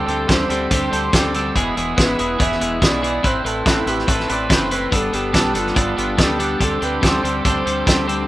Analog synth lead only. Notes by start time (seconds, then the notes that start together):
Already playing: A4
0.31 C5
0.73 C5
0.93 C5
1.98 B4
2.41 E5
2.84 D5
3.26 C5
3.46 A4
3.89 G4
4.11 A4
4.32 D5
4.53 C5
4.75 B4
4.95 A4
5.14 G4
5.59 F4
5.98 F4
6.21 G4
6.63 A4
6.84 B4
7.04 C5
7.47 C5
7.68 C5